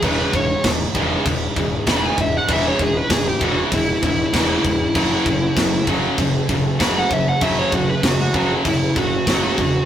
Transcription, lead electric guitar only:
\new Staff \with { instrumentName = "Lead electric guitar" } { \time 4/4 \key cis \minor \tempo 4 = 98 b'8 cis''8 r2 b''16 gis''16 e''16 fis''16 | e''16 cis''16 gis'16 b'16 gis'16 g'16 fis'16 r16 e'8 e'4.~ | e'4. r4. b''16 fis''16 e''16 fis''16 | e''16 cis''16 fis'16 b'16 fis'16 fis'16 fis'16 r16 e'8 fis'4. | }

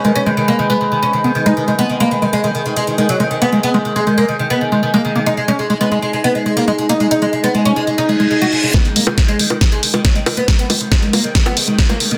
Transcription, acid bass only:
\new Staff \with { instrumentName = "Acid bass" } { \clef bass \time 4/4 \key gis \minor \tempo 4 = 138 gis16 r16 gis16 r16 gis16 gis16 gis16 r4 b16 r16 gis16 r16 gis16 | gis16 r16 gis16 r16 gis16 gis16 gis16 r4 gis16 r16 gis16 r16 ais16 | gis16 r16 gis16 r16 gis16 gis16 gis16 r4 gis16 r16 gis16 r16 ais16 | gis16 r16 gis16 r16 gis16 gis16 gis16 r4 gis16 r16 gis16 r16 ais16 |
gis16 r16 gis16 r16 gis16 gis16 gis16 r8. gis16 gis16 r16 gis16 r16 dis'16 | gis16 r16 gis16 r16 gis16 gis16 gis16 r4 gis16 r16 gis16 r16 ais16 | gis16 r16 gis16 r16 gis16 gis16 gis16 r4 gis16 r16 gis16 r16 ais16 | }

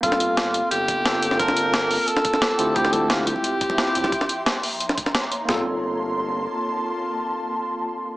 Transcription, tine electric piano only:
\new Staff \with { instrumentName = "Tine electric piano" } { \time 4/4 \key g \dorian \tempo 4 = 176 <bes c' f' a'>2. <bes c' f' a'>4 | <bes c' f' a''>2.~ <bes c' f' a''>8 <c' e' f' g'>8 | <c' e' f' g'>2. <c' e' f' g'>4 | r1 |
<bes c' f' a'>1~ | <bes c' f' a'>1 | }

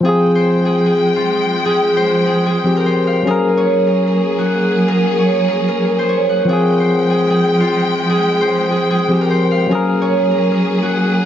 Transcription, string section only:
\new Staff \with { instrumentName = "String section" } { \time 4/4 \key f \minor \tempo 4 = 149 <f aes g''>1~ | <f aes g''>1 | <ges bes aes'>1~ | <ges bes aes'>1 |
<f aes g''>1~ | <f aes g''>1 | <ges bes aes'>1 | }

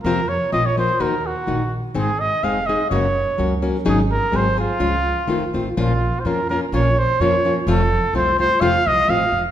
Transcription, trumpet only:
\new Staff \with { instrumentName = "Trumpet" } { \time 2/4 \key aes \mixolydian \tempo 4 = 126 bes'8 des''8 ees''16 des''16 c''8 | bes'8 ges'4 r8 | aes'8 ees''8 f''8 ees''8 | des''4. r8 |
aes'8 bes'8 c''8 f'8~ | f'4. r8 | \key bes \minor f'8.~ f'32 c''32 bes'8 bes'8 | des''8 c''8 des''8. r16 |
a'4 c''8 c''8 | f''8 ees''8 f''8. r16 | }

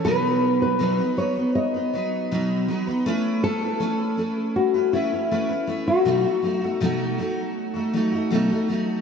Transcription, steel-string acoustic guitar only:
\new Staff \with { instrumentName = "Steel-string acoustic guitar" } { \time 4/4 \key a \lydian \tempo 4 = 80 <b, fis b dis' b'>4 <b, fis b dis' b'>16 <b dis' b'>16 <fis b dis' b'>16 <b dis' b'>8 <b dis' b'>16 <fis b dis' b'>8 <b, fis b dis' b'>8 <fis b dis' b'>16 <b dis' b'>16 | <a cis' e' b'>8 <a cis' e' b'>16 <cis' e' b'>16 <a cis' e' b'>8 <a cis' e' b'>8. <cis' e' b'>16 <a cis' e' b'>16 <cis' e' b'>16 <a cis' e' b'>16 <cis' e' b'>16 <a cis' e' b'>8 | <b, fis a dis' fis'>16 <a dis' fis'>16 <fis a dis' fis'>16 <a dis' fis'>16 <b, fis a dis' fis'>8 <fis a dis' fis'>8. <a dis' fis'>16 <fis a dis' fis'>16 <a dis' fis'>16 <b, fis a dis' fis'>16 <a dis' fis'>16 <fis a dis' fis'>8 | }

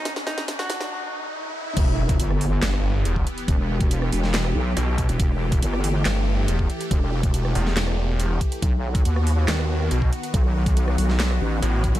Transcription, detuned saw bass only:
\new Staff \with { instrumentName = "Detuned saw bass" } { \clef bass \time 4/4 \key e \minor \tempo 4 = 140 r1 | r2 g,,4 e,,8 r8 | r2. b,,8 r8 | r2 g,,4 e,,8 r8 |
r4. e,,2 r8 | r2 dis,4 b,,8 r8 | r2. a,,8 r8 | }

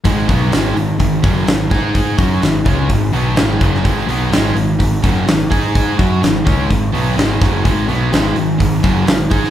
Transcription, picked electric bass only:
\new Staff \with { instrumentName = "Picked electric bass" } { \clef bass \time 4/4 \key gis \minor \tempo 4 = 126 gis,,8 b,,8 gis,,8 gis,,8 gis,,8 fis,,8 gis,,8 gis,8~ | gis,8 fis,8 gis,,8 cis,8 gis,,8 b,,8 gis,,8 fis,,8 | gis,,8 b,,8 gis,,8 gis,,8 gis,,8 fis,,8 gis,,8 gis,8~ | gis,8 fis,8 gis,,8 cis,8 gis,,8 b,,8 gis,,8 fis,,8 |
gis,,8 b,,8 gis,,8 gis,,8 gis,,8 fis,,8 gis,,8 gis,8 | }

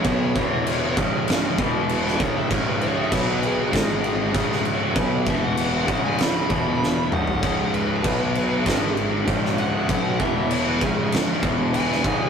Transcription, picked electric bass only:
\new Staff \with { instrumentName = "Picked electric bass" } { \clef bass \time 4/4 \key cis \minor \tempo 4 = 98 b,,8 e,,4 cis,,4 e,,4 cis,,8 | cis,,4 b,,4 gis,,4 cis,,4 | b,,8 e,,4 cis,,4 e,,4 cis,,8 | cis,,4 b,,4 gis,,4 cis,,4 |
b,,8 e,,4 cis,,4 e,,4 cis,,8 | }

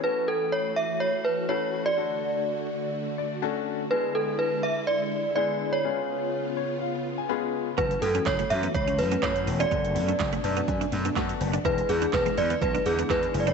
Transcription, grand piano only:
\new Staff \with { instrumentName = "Grand piano" } { \time 4/4 \key fis \minor \tempo 4 = 124 << { r1 | r2 r8 d''8 a''4 | r1 | r4. cis''8 eis''8. gis''16 b''4 |
r1 | r4. a''8 gis''4 fis''4 | r1 | } \\ { <a cis' e' fis' a'>4. r4. <a cis' e' fis' a'>8. r16 | <a d' fis' a'>4. r4. <a cis' d' fis' a'>8. r16 | <gis b d' e' gis'>4. r4. <gis b d' e' gis'>8. r16 | <gis b cis' eis' gis'>4. r4. <gis b cis' eis' gis'>8. r16 |
<a cis' e' fis' a'>4. r4. <a cis' e' fis' a'>8. r16 | <a b d' fis' a'>4. r4. <a b d' fis' a'>8. r16 | <gis b d' e' gis'>4. r4. <gis b d' e' gis'>8. r16 | } >> }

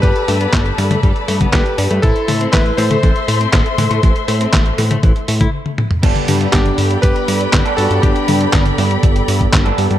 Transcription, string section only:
\new Staff \with { instrumentName = "String section" } { \time 4/4 \key g \major \tempo 4 = 120 <a' d'' a'' b''>1 | <a' c'' e'' c'''>1~ | <a' c'' e'' c'''>2. r4 | <a' d'' g'' b''>1~ |
<a' d'' g'' b''>1 | }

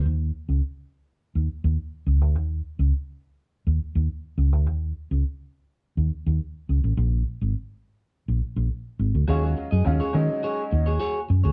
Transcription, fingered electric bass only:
\new Staff \with { instrumentName = "Fingered electric bass" } { \clef bass \time 4/4 \key ees \minor \tempo 4 = 104 ees,8 r16 cis,16 r4 r16 ees,16 r16 ees,16 r8 cis,16 d,16 | ees,8 r16 cis,16 r4 r16 ees,16 r16 ees,16 r8 cis,16 d,16 | ees,8 r16 cis,16 r4 r16 ees,16 r16 ees,16 r8 cis,16 a,,16 | bes,,8 r16 aes,,16 r4 r16 bes,,16 r16 bes,,16 r8 aes,,16 d,16 |
ees,8 r16 ges,16 ees,16 r16 ees16 r8. ees,8 r8 ges,16 d,16 | }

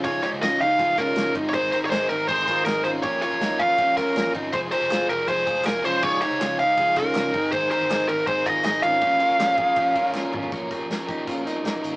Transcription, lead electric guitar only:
\new Staff \with { instrumentName = "Lead electric guitar" } { \time 4/4 \key bes \dorian \tempo 4 = 160 des''8 des''8 ees''8 f''4 bes'4 r16. des''32 | c''8 c''16. des''32 c''8 bes'8 c''4 bes'8 c''8 | des''8 des''4 f''4 bes'4 r8 | c''8 c''4 bes'8 c''4 bes'8 c''8 |
des''8 des''4 f''4 bes'4. | c''8 c''4 bes'8 c''8 ees''8 ees''8 f''8~ | f''2. r4 | r1 | }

